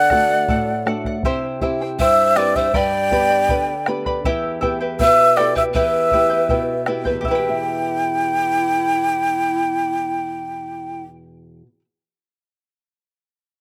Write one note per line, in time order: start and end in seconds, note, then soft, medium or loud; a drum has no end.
0.00 0.46 D3 medium
0.00 0.11 A4 medium
0.00 0.12 D5 medium
0.00 0.83 D5 medium
0.00 0.12 F#5 medium
0.00 0.84 F#5 medium
0.10 0.72 A3 soft
0.10 0.72 D4 soft
0.10 0.72 F#4 medium
0.10 0.31 A4 medium
0.10 0.30 D5 medium
0.10 0.29 F#5 medium
0.10 bombo rim medium
0.10 bombo low medium
0.30 0.49 D5 soft
0.30 0.49 F#5 soft
0.48 1.22 A2 medium
0.48 0.85 A4 medium
0.48 0.86 D5 medium
0.48 0.87 F#5 medium
0.48 bombo low medium
0.86 1.16 A3 soft
0.86 1.17 D4 soft
0.86 1.17 F#4 soft
0.86 1.05 A4 medium
0.86 1.06 D5 medium
0.86 1.05 F#5 medium
0.86 bombo rim medium
1.05 1.24 D5 soft
1.05 1.25 F#5 medium
1.05 bombo low medium
1.23 1.98 C3 medium
1.23 1.61 E4 medium
1.23 1.62 G4 medium
1.23 1.61 C5 loud
1.23 1.60 E5 medium
1.23 1.62 G5 medium
1.23 bombo low medium
1.61 2.22 C4 soft
1.61 2.22 E4 soft
1.61 1.81 E4 medium
1.61 2.22 G4 medium
1.61 1.81 C5 medium
1.61 1.81 E5 medium
1.61 1.80 G5 medium
1.61 bombo low medium
1.82 2.00 E4 soft
1.82 2.00 C5 soft
1.82 2.00 G5 soft
1.99 2.72 G2 medium
1.99 2.37 E4 medium
1.99 2.39 C5 medium
1.99 2.38 C5 medium
1.99 2.36 E5 medium
1.99 2.38 E5 medium
1.99 2.38 G5 medium
1.99 bombo low medium
2.36 2.66 C4 soft
2.36 2.67 E4 soft
2.36 2.56 E4 soft
2.36 2.67 G4 soft
2.36 2.58 B4 medium
2.36 2.55 C5 medium
2.36 2.57 D5 medium
2.36 2.56 E5 soft
2.36 2.54 G5 medium
2.36 bombo rim medium
2.56 2.74 E4 soft
2.56 2.77 C5 medium
2.56 2.74 C5 soft
2.56 2.78 E5 medium
2.56 2.73 G5 soft
2.56 bombo low medium
2.74 3.48 G2 medium
2.74 3.12 G4 medium
2.74 3.11 B4 medium
2.74 3.12 D5 medium
2.74 3.88 D5 medium
2.74 3.10 G5 medium
2.74 3.89 G5 medium
2.74 3.12 B5 medium
2.74 bombo low medium
3.11 3.72 B3 medium
3.11 3.72 D4 soft
3.11 3.72 G4 soft
3.11 3.31 B4 medium
3.11 3.30 D5 medium
3.11 3.31 G5 medium
3.11 3.29 B5 medium
3.11 bombo low medium
3.31 3.49 B4 soft
3.31 3.49 D5 soft
3.31 3.49 B5 soft
3.49 4.23 D3 medium
3.49 3.86 B4 medium
3.49 3.86 D5 medium
3.49 3.85 G5 medium
3.49 3.87 B5 medium
3.49 bombo low medium
3.86 4.18 B3 soft
3.86 4.18 D4 soft
3.86 4.19 G4 medium
3.86 4.06 B4 medium
3.86 4.06 D5 medium
3.86 4.06 G5 medium
3.86 4.05 B5 medium
3.86 bombo rim medium
4.06 4.24 B4 medium
4.06 4.25 D5 soft
4.06 4.25 B5 medium
4.06 bombo low medium
4.25 4.99 E2 medium
4.25 4.60 E4 loud
4.25 4.63 G4 medium
4.25 4.61 B4 medium
4.25 4.60 E5 medium
4.25 4.61 G5 medium
4.25 bombo low medium
4.61 5.23 B3 soft
4.61 4.81 E4 medium
4.61 5.23 E4 soft
4.61 5.23 G4 medium
4.61 4.80 B4 medium
4.61 4.81 E5 medium
4.61 4.79 G5 medium
4.61 bombo low medium
4.80 4.99 E4 soft
4.80 4.99 B4 soft
4.80 4.99 G5 soft
4.99 5.73 B2 medium
4.99 5.36 E4 medium
4.99 5.36 B4 medium
4.99 5.39 B4 medium
4.99 5.35 E5 medium
4.99 5.38 E5 medium
4.99 5.36 G5 medium
4.99 bombo low medium
5.36 5.68 B3 soft
5.36 5.56 E4 medium
5.36 5.69 E4 soft
5.36 5.69 G4 soft
5.36 5.54 A4 medium
5.36 5.55 B4 medium
5.36 5.56 D5 medium
5.36 5.56 E5 soft
5.36 5.54 G5 medium
5.36 bombo rim medium
5.55 5.74 E4 soft
5.55 5.61 B4 medium
5.55 5.74 B4 soft
5.55 5.63 E5 medium
5.55 5.75 G5 medium
5.55 bombo low medium
5.74 6.49 E2 medium
5.74 6.11 E4 medium
5.74 6.13 G4 medium
5.74 6.84 B4 medium
5.74 6.12 B4 medium
5.74 6.84 E5 medium
5.74 6.11 E5 medium
5.74 6.12 G5 medium
5.74 bombo low medium
6.11 6.74 B3 soft
6.11 6.30 E4 medium
6.11 6.74 E4 soft
6.11 6.74 G4 medium
6.11 6.30 B4 medium
6.11 6.31 E5 medium
6.11 6.28 G5 medium
6.11 bombo low medium
6.30 6.48 E4 soft
6.30 6.49 B4 soft
6.30 6.49 G5 soft
6.49 7.12 B2 medium
6.49 6.86 E4 medium
6.49 6.86 B4 medium
6.49 6.85 E5 medium
6.49 6.87 G5 medium
6.49 bombo low medium
6.86 7.18 B3 soft
6.86 7.06 E4 medium
6.86 7.19 E4 soft
6.86 7.19 G4 soft
6.86 7.05 B4 medium
6.86 7.06 E5 medium
6.86 7.04 G5 medium
6.86 bombo rim medium
7.04 11.62 E2 soft
7.04 7.26 E4 soft
7.04 7.26 B4 medium
7.04 7.24 G5 medium
7.04 bombo low medium
7.13 11.66 B2 soft
7.21 11.71 B3 soft
7.21 11.74 G4 medium
7.21 11.76 E5 medium
7.21 bombo low medium
7.26 11.03 E4 medium
7.26 11.78 E4 medium
7.26 11.04 G5 medium
7.31 7.49 E4 soft
7.31 11.79 B4 medium
7.31 11.81 G5 medium
7.39 11.79 G4 soft
7.49 11.84 E5 medium